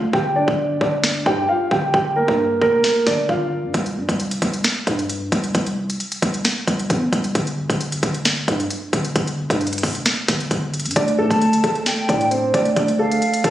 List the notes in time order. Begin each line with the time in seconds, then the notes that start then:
Already playing: D2 F4 F5
0.13 G1 G4 G5, kick
0.36 D4 D5
0.48 G1, kick
0.81 G1 D4 D5, kick
1.04 snare
1.26 G2 G4 G5, kick
1.49 F4 F5
1.71 G1 G4 G5, kick
1.94 G1 G4 G5, kick
2.16 A#3 A#4
2.28 G2, kick
2.62 F1 A#3 A#4, kick
2.84 snare
3.07 G1 D4 D5, kick, snare
3.29 G1 F4 F5, kick
3.64 G2
3.74 C2, kick, closed hi-hat
3.86 closed hi-hat
3.97 G2
4.09 C2, kick, closed hi-hat
4.20 closed hi-hat
4.31 closed hi-hat
4.42 C2, kick, closed hi-hat
4.54 closed hi-hat
4.64 snare, closed hi-hat
4.87 G2, kick, closed hi-hat
4.99 closed hi-hat
5.09 closed hi-hat
5.32 C2, kick, closed hi-hat
5.44 closed hi-hat
5.55 C2, kick, closed hi-hat
5.66 closed hi-hat
5.90 closed hi-hat
6.00 closed hi-hat
6.12 closed hi-hat
6.22 C2, kick, closed hi-hat
6.34 closed hi-hat
6.45 snare, closed hi-hat
6.68 C2, kick, closed hi-hat
6.79 closed hi-hat
6.90 E2, kick, closed hi-hat
7.13 C2, kick, closed hi-hat
7.24 closed hi-hat
7.35 G1, kick, closed hi-hat
7.47 closed hi-hat
7.70 G1, kick, closed hi-hat
7.81 closed hi-hat
7.92 closed hi-hat
8.03 G1, kick, closed hi-hat
8.14 closed hi-hat
8.25 snare, closed hi-hat
8.48 G2, kick, closed hi-hat
8.60 closed hi-hat
8.70 closed hi-hat
8.93 G1, kick, closed hi-hat
9.05 closed hi-hat
9.16 G1, kick, closed hi-hat
9.27 closed hi-hat
9.50 G2, kick, closed hi-hat
9.61 closed hi-hat
9.67 closed hi-hat
9.73 closed hi-hat
9.78 closed hi-hat
9.83 F1, kick, open hi-hat
9.95 closed hi-hat
10.06 snare, closed hi-hat
10.28 G1, kick, snare, closed hi-hat
10.40 closed hi-hat
10.51 G1, kick, closed hi-hat
10.74 closed hi-hat
10.80 closed hi-hat
10.85 G2, closed hi-hat
10.91 closed hi-hat
10.96 D2 D4 D5, kick, closed hi-hat
11.08 closed hi-hat
11.19 A2 A3 A4 A5
11.31 D2, kick, closed hi-hat
11.41 closed hi-hat
11.53 closed hi-hat
11.64 D2 A3 A4, kick, closed hi-hat
11.75 closed hi-hat
11.86 G5, snare, closed hi-hat
12.09 A2 D4 D5, kick, closed hi-hat
12.21 closed hi-hat
12.31 C4 C5, closed hi-hat
12.54 D2 D4 D5, kick, closed hi-hat
12.65 closed hi-hat
12.76 D2 D4 D5, kick, closed hi-hat
12.88 closed hi-hat
12.99 A3 A4 F5
13.12 closed hi-hat
13.22 closed hi-hat
13.34 closed hi-hat
13.44 D2 A3 A4, kick, closed hi-hat